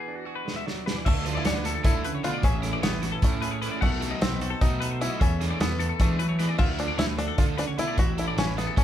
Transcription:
Already playing: clean electric guitar E3 B3 F#4 G#4, five-string banjo B4
0.08 clean electric guitar D4
0.16 clean electric guitar F#4
0.25 clean electric guitar F#4 G#4
0.36 clean electric guitar B4
0.45 clean electric guitar G#3, snare
0.56 clean electric guitar E5
0.66 clean electric guitar F#3 D5, snare
0.86 clean electric guitar E3 B4, snare
0.96 clean electric guitar D5
1.05 picked electric bass D2, clean electric guitar D3 A4 E5, five-string banjo A3, muted overdriven electric guitar stroke, kick, crash
1.25 overdriven electric guitar D3 A3 D4 F4, clean electric guitar F3, closed hi-hat
1.35 five-string banjo E4, clean electric guitar D5
1.45 picked electric bass D2, clean electric guitar C#4 C#5, five-string banjo D4, muted overdriven electric guitar stroke, snare, closed hi-hat
1.55 clean electric guitar E4 B4
1.64 clean electric guitar A4, muted overdriven electric guitar stroke, snare, closed hi-hat
1.75 clean electric guitar A4
1.84 overdriven electric guitar D3 A3 D4 F4, picked electric bass D3, clean electric guitar D3, five-string banjo E4, kick, closed hi-hat
2.04 clean electric guitar C#3 B4, muted overdriven electric guitar stroke, closed hi-hat
2.15 clean electric guitar C#5
2.23 clean electric guitar B2 B4, overdriven electric guitar D3 A3 D4 F4, five-string banjo F4, closed hi-hat
2.34 clean electric guitar D5
2.43 picked electric bass A1, clean electric guitar A2 G#4 E5, five-string banjo C#4, muted overdriven electric guitar stroke, kick, closed hi-hat
2.62 clean electric guitar E3, overdriven electric guitar E3 A3 C#4 E4, snare, closed hi-hat
2.73 clean electric guitar D5
2.83 picked electric bass A1, five-string banjo B3, clean electric guitar E4 C#5, muted overdriven electric guitar stroke, snare, closed hi-hat
2.93 clean electric guitar B4
3.02 clean electric guitar F#4 A4, muted overdriven electric guitar stroke, snare, closed hi-hat
3.12 clean electric guitar G#4 A4
3.22 picked electric bass A2, overdriven electric guitar E3 A3 C#4 E4, five-string banjo A3, clean electric guitar C#4, kick, closed hi-hat
3.42 clean electric guitar G#4 B4, muted overdriven electric guitar stroke, closed hi-hat
3.51 clean electric guitar C#5
3.62 overdriven electric guitar E3 A3 C#4 E4, clean electric guitar C#4 B4, closed hi-hat
3.71 clean electric guitar D5
3.81 picked electric bass B1, clean electric guitar B2 A4 F#5, five-string banjo A3, muted overdriven electric guitar stroke, kick, crash
4.01 clean electric guitar F#3, overdriven electric guitar F#3 A3 D#4 F#4, snare, closed hi-hat
4.11 clean electric guitar D#5
4.21 picked electric bass B1, five-string banjo C4, clean electric guitar D#4 C5, muted overdriven electric guitar stroke, snare, closed hi-hat
4.31 clean electric guitar B4
4.40 clean electric guitar F#4 A4, muted overdriven electric guitar stroke, closed hi-hat
4.50 clean electric guitar A4
4.61 picked electric bass B2, overdriven electric guitar F#3 A3 D#4 F#4, clean electric guitar A3, five-string banjo D#4, kick, closed hi-hat
4.80 clean electric guitar A4 B4, muted overdriven electric guitar stroke, closed hi-hat
4.90 clean electric guitar C5
5.00 overdriven electric guitar F#3 A3 D#4 F#4, clean electric guitar A3 B4, five-string banjo E4, closed hi-hat
5.10 clean electric guitar D#5
5.20 picked electric bass E2, clean electric guitar E3 A4 E5, five-string banjo C#4, muted overdriven electric guitar stroke, kick, closed hi-hat
5.40 overdriven electric guitar E3 B3 D4 G#4, clean electric guitar A3, snare, closed hi-hat
5.50 clean electric guitar D5
5.60 picked electric bass E2, five-string banjo B3, clean electric guitar A4 C#5, muted overdriven electric guitar stroke, snare, closed hi-hat
5.70 clean electric guitar B4
5.80 clean electric guitar A4, muted overdriven electric guitar stroke, closed hi-hat
5.89 clean electric guitar A4
5.99 picked electric bass E3, overdriven electric guitar E3 B3 D4 G#4, clean electric guitar G#3, five-string banjo A3, kick, closed hi-hat
6.19 clean electric guitar F#3 B4, muted overdriven electric guitar stroke, closed hi-hat
6.29 clean electric guitar C#5
6.39 overdriven electric guitar E3 B3 D4 G#4, clean electric guitar E3 B4, snare, closed hi-hat
6.49 clean electric guitar D5
6.59 picked electric bass D2, clean electric guitar D3 F3 A3 E4 E5, five-string banjo F4, muted overdriven electric guitar stroke, kick, crash
6.79 clean electric guitar F3, overdriven electric guitar A3 D4 F4 A4, five-string banjo D4, closed hi-hat
6.88 clean electric guitar D5
6.98 picked electric bass D2, clean electric guitar A3 C#5, five-string banjo E4, muted overdriven electric guitar stroke, snare, closed hi-hat
7.08 clean electric guitar B4
7.18 five-string banjo D4, clean electric guitar A4, muted overdriven electric guitar stroke, closed hi-hat
7.28 clean electric guitar A4
7.38 clean electric guitar D3, picked electric bass D3, overdriven electric guitar A3 D4 F4 A4, five-string banjo F4, kick, snare, closed hi-hat
7.58 clean electric guitar C#3 B4, five-string banjo D4, muted overdriven electric guitar stroke, snare, closed hi-hat
7.68 clean electric guitar C#5
7.78 clean electric guitar B2 B4, overdriven electric guitar A3 D4 F4 A4, five-string banjo E4, closed hi-hat
7.88 clean electric guitar D5
7.98 picked electric bass A1, clean electric guitar A2 E4 E5, five-string banjo F#4, muted overdriven electric guitar stroke, kick, closed hi-hat
8.17 clean electric guitar E3, overdriven electric guitar A3 C#4 E4 A4, five-string banjo E4, closed hi-hat
8.28 clean electric guitar D5
8.37 picked electric bass A1, five-string banjo C#4, clean electric guitar E4 C#5, muted overdriven electric guitar stroke, snare, closed hi-hat
8.47 clean electric guitar B4
8.57 five-string banjo B3, clean electric guitar G#4 A4, muted overdriven electric guitar stroke, snare, closed hi-hat
8.67 clean electric guitar A4
8.77 clean electric guitar F#2, picked electric bass A2, overdriven electric guitar A3 C#4 E4 A4, five-string banjo C#4, kick, closed hi-hat

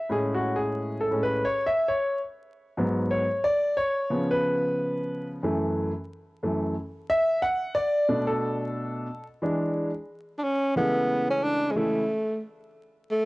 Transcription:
0.09 grand piano A2 G#3 C#4 G#4
0.34 grand piano F#4
0.56 grand piano G#4
1.01 grand piano A4
1.11 grand piano A2 G#3 C#4
1.23 grand piano B4
1.45 grand piano C#5
1.66 grand piano E5
1.88 grand piano C#5
2.77 grand piano G#2 F#3 B3
3.11 grand piano C#5
3.44 grand piano D5
3.77 grand piano C#5
4.10 grand piano C#3 F3 B3
4.31 grand piano B4
5.43 grand piano F#2 E3 A3
6.43 grand piano F#2 E3 A3
7.09 grand piano E5
7.42 grand piano F#5
7.75 grand piano D5
8.09 grand piano B2 A3 D4
8.27 grand piano A4
9.42 grand piano E3 G#3 D4
10.38 tenor saxophone D4
10.44 tenor saxophone C#4
10.76 grand piano C#3 E3 G#3 A3 E4, tenor saxophone B3
11.30 tenor saxophone C#4
11.43 tenor saxophone D4
11.71 tenor saxophone G#3
11.76 grand piano C#3 E3 G#3 A3 E4, tenor saxophone A3
13.11 tenor saxophone A3

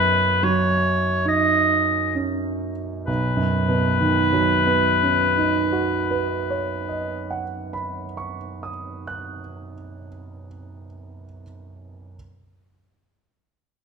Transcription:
Already playing: grand piano F#2 C#4 D#4, oboe B4
0.43 grand piano F#3, oboe C#5
1.25 grand piano D#4, oboe D#5
2.15 grand piano C#4
3.06 grand piano B1, oboe B4
3.37 grand piano F#2
3.68 grand piano B2
4.00 grand piano D#3
4.32 grand piano F#3
4.67 grand piano B3
5.03 grand piano C#4
5.38 grand piano D#4
5.72 grand piano F#4
6.11 grand piano B4
6.50 grand piano C#5
6.89 grand piano D#5
7.31 grand piano F#5
7.73 grand piano B5
8.17 grand piano C#6
8.63 grand piano D#6
9.07 grand piano F#6

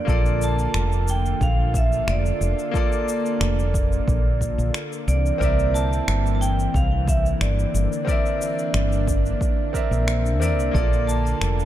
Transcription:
0.05 fretless electric bass A#1, analog synth pad D3 A#3 F4 A4, grand piano A#3 F4 A4, kick, shaker
0.10 vibraphone D5, grand piano D5
0.26 shaker
0.42 vibraphone A5, shaker
0.59 shaker
0.74 fretless electric bass F1, finger snap, shaker
0.92 shaker
1.08 vibraphone G5, shaker
1.26 shaker
1.41 fretless electric bass A#1, vibraphone F5, kick, shaker
1.74 vibraphone E5, kick, shaker
1.92 shaker
2.07 fretless electric bass F1, vibraphone D5, finger snap, shaker
2.26 shaker
2.41 fretless electric bass F1, shaker
2.59 shaker
2.71 grand piano A#3 F4 A4, kick, shaker
2.77 vibraphone D5, grand piano D5
2.92 shaker
3.08 shaker
3.26 shaker
3.40 fretless electric bass F1, finger snap, shaker
3.59 shaker
3.74 kick, shaker
3.92 shaker
4.08 fretless electric bass A#1, kick, shaker
4.41 kick, shaker
4.58 fretless electric bass A#1, shaker
4.74 finger snap, shaker
4.93 shaker
5.07 fretless electric bass C2, analog synth pad D3 E3 A#3 C4, vibraphone D5, shaker
5.26 shaker
5.38 fretless electric bass C2, grand piano C4 A#4 D5, vibraphone D5, kick, shaker
5.44 grand piano E5
5.59 shaker
5.74 vibraphone A5, shaker
5.93 shaker
6.08 fretless electric bass G1, finger snap, shaker
6.26 shaker
6.35 vibraphone A5
6.41 vibraphone G5, shaker
6.59 shaker
6.74 fretless electric bass C2, vibraphone F5, kick, shaker
7.08 vibraphone E5, kick, shaker
7.26 shaker
7.41 fretless electric bass G1, vibraphone D5, finger snap, shaker
7.59 shaker
7.74 fretless electric bass G1, analog synth pad D4, shaker
7.93 shaker
8.05 grand piano C4 A#4 D5, vibraphone D5, kick, shaker
8.11 grand piano E5
8.26 shaker
8.42 shaker
8.59 shaker
8.74 fretless electric bass G1, finger snap, shaker
8.92 shaker
9.08 kick, shaker
9.26 shaker
9.41 kick, shaker
9.73 grand piano C4 A#4 D5 E5, kick, shaker
9.91 fretless electric bass A#1, shaker
10.08 finger snap, shaker
10.26 shaker
10.40 fretless electric bass E2, grand piano C4 A#4 D5 E5, vibraphone D5, shaker
10.58 fretless electric bass C2, shaker
10.71 fretless electric bass A#1, grand piano A#3 F4 A4, analog synth pad F4 A4, vibraphone D5, kick
10.76 grand piano D5, shaker
10.93 shaker
11.07 vibraphone A5, shaker
11.26 shaker
11.41 fretless electric bass F1, finger snap, shaker
11.60 shaker

